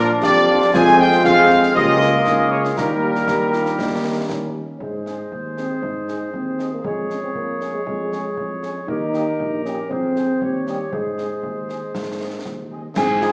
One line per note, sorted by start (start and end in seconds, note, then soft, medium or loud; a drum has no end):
0.00 0.14 A#2 loud
0.00 0.70 F3 medium
0.00 0.74 D4 medium
0.00 0.18 F4 medium
0.00 0.70 F4 medium
0.00 0.70 D5 medium
0.22 0.65 F2 medium
0.22 0.70 G4 loud
0.22 0.70 D5 loud
0.22 concert bass drum medium
0.22 snare medium
0.49 0.58 F3 medium
0.49 0.58 D4 medium
0.49 0.58 F4 medium
0.62 snare medium
0.74 1.19 F2 loud
0.74 1.21 G#3 medium
0.74 1.21 C4 medium
0.74 1.21 F4 loud
0.74 1.21 F4 medium
0.74 2.73 G#4 loud
0.74 1.72 C5 medium
0.74 0.97 G#5 loud
0.74 concert bass drum loud
0.74 snare medium
0.74 crash soft
1.00 1.23 G5 loud
1.12 snare medium
1.24 1.70 F2 medium
1.24 1.72 G#3 medium
1.24 1.72 C4 medium
1.24 1.72 F4 medium
1.24 1.78 G#4 loud
1.24 1.72 F5 loud
1.24 concert bass drum medium
1.24 snare medium
1.50 snare medium
1.63 snare medium
1.75 2.21 C#2 loud
1.75 2.73 G#3 medium
1.75 2.74 G#3 medium
1.75 2.77 A#3 medium
1.75 2.73 F4 medium
1.75 2.03 G4 loud
1.75 2.76 A#4 medium
1.75 2.47 D#5 loud
1.75 concert bass drum medium
2.01 2.26 F4 medium
2.01 snare medium
2.27 2.71 C#2 medium
2.27 2.54 D#4 medium
2.27 concert bass drum medium
2.27 snare medium
2.51 2.80 F4 medium
2.51 2.62 C#5 medium
2.65 snare medium
2.76 3.22 D#2 medium
2.76 4.56 G3 medium
2.76 4.52 A#3 medium
2.76 4.52 D#4 medium
2.76 4.55 G4 medium
2.76 3.24 G4 medium
2.76 4.51 A#4 loud
2.76 4.51 A#4 medium
2.76 concert bass drum medium
2.76 snare medium
3.15 snare soft
3.28 3.73 D#2 medium
3.28 3.52 G4 medium
3.28 concert bass drum medium
3.28 snare medium
3.53 3.77 F4 medium
3.53 snare medium
3.66 snare medium
3.79 4.24 D#2 medium
3.79 4.26 D#4 medium
3.79 concert bass drum medium
3.79 snare medium
4.30 4.67 D#2 medium
4.30 4.77 C#4 medium
4.30 concert bass drum medium
4.30 snare medium
4.80 5.23 G#2 soft
4.80 5.41 G#3 medium
4.80 6.81 G#4 soft
4.80 6.80 C5 soft
4.80 concert bass drum medium
5.06 5.16 G#3 soft
5.06 5.16 C4 soft
5.06 5.16 G#4 soft
5.06 5.16 D#5 soft
5.06 snare soft
5.32 5.74 D#2 soft
5.32 concert bass drum medium
5.57 5.67 G#3 soft
5.57 5.66 C4 soft
5.57 5.85 C4 medium
5.57 5.66 G#4 soft
5.57 5.67 D#5 soft
5.57 snare soft
5.82 6.25 G#2 soft
5.82 6.33 D#4 medium
5.82 concert bass drum medium
6.08 6.17 G#3 soft
6.08 6.17 C4 soft
6.08 6.17 G#4 soft
6.08 6.18 D#5 soft
6.08 snare soft
6.33 6.76 D#2 soft
6.33 6.69 C4 medium
6.33 concert bass drum medium
6.59 6.68 G#3 soft
6.59 6.68 C4 soft
6.59 6.68 G#4 soft
6.59 6.68 D#5 soft
6.59 snare soft
6.73 6.84 A#3 medium
6.84 7.27 F2 medium
6.84 7.20 G#3 medium
6.84 8.84 G#4 soft
6.84 8.84 C#5 soft
6.84 concert bass drum medium
7.10 7.19 G#3 soft
7.10 7.19 C#4 soft
7.10 7.20 G#4 soft
7.10 7.20 C#5 soft
7.10 snare soft
7.24 7.29 C4 medium
7.35 7.78 F2 soft
7.35 7.71 A#3 medium
7.35 concert bass drum medium
7.61 7.70 G#3 soft
7.61 7.70 C#4 soft
7.61 7.70 G#4 soft
7.61 7.70 C#5 soft
7.61 snare soft
7.74 7.86 G#3 medium
7.86 8.29 F2 medium
7.86 8.59 G#3 medium
7.86 concert bass drum medium
8.11 8.21 G#3 soft
8.11 8.21 C#4 soft
8.11 8.21 G#4 soft
8.11 8.21 C#5 soft
8.11 snare soft
8.37 8.80 F2 soft
8.37 concert bass drum medium
8.63 8.72 G#3 soft
8.63 8.72 C#4 medium
8.63 8.72 G#4 soft
8.63 8.72 C#5 soft
8.63 snare soft
8.88 9.31 D#2 medium
8.88 9.61 D#4 medium
8.88 9.86 G4 soft
8.88 9.86 A#4 medium
8.88 concert bass drum medium
9.14 9.23 A#3 soft
9.14 9.23 G4 soft
9.14 9.23 D#5 soft
9.14 snare soft
9.40 9.82 A#1 medium
9.40 concert bass drum medium
9.65 9.74 A#3 medium
9.65 9.92 C#4 medium
9.65 9.74 G4 medium
9.65 9.74 D#5 soft
9.65 snare soft
9.89 10.33 F2 medium
9.89 10.66 C4 medium
9.89 10.37 G#4 soft
9.89 10.41 C5 soft
9.89 concert bass drum medium
10.16 10.26 G#3 soft
10.16 10.26 C4 soft
10.16 10.26 G#4 soft
10.16 10.26 G#5 soft
10.16 snare soft
10.41 10.84 D#2 soft
10.41 10.92 G4 soft
10.41 10.92 C#5 soft
10.41 concert bass drum medium
10.67 10.78 G3 medium
10.67 10.76 A#3 soft
10.67 10.76 C#4 soft
10.67 10.76 G4 soft
10.67 10.77 D#5 soft
10.67 snare soft
10.91 11.35 G#2 soft
10.91 12.67 G#3 medium
10.91 12.70 G#4 soft
10.91 12.70 C5 soft
10.91 concert bass drum medium
11.18 11.27 G#3 soft
11.18 11.27 C4 soft
11.18 11.27 G#4 soft
11.18 11.28 D#5 soft
11.18 snare soft
11.43 11.81 D#2 soft
11.43 concert bass drum medium
11.68 11.78 G#3 soft
11.68 11.78 C4 soft
11.68 11.78 G#4 soft
11.68 11.78 D#5 soft
11.68 snare soft
11.94 12.37 G#2 soft
11.94 concert bass drum medium
11.94 snare medium
12.20 12.29 G#3 soft
12.20 12.29 C4 soft
12.20 12.29 G#4 soft
12.20 12.29 D#5 soft
12.45 12.88 D#2 medium
12.45 concert bass drum medium
12.45 snare soft
12.71 12.80 G#3 soft
12.71 12.80 C4 soft
12.71 12.80 G#4 soft
12.71 12.80 D#5 soft
12.95 13.32 G#2 medium
12.95 13.32 G#3 medium
12.95 13.07 C4 medium
12.95 13.32 C4 medium
12.95 13.32 G#4 loud
12.95 13.32 G#4 medium
12.95 13.32 G#5 medium
12.95 concert bass drum medium
12.95 snare medium
12.95 crash medium
13.21 13.31 G#3 medium
13.21 13.31 C4 medium
13.21 13.31 D#4 medium
13.21 13.32 F4 medium
13.21 snare medium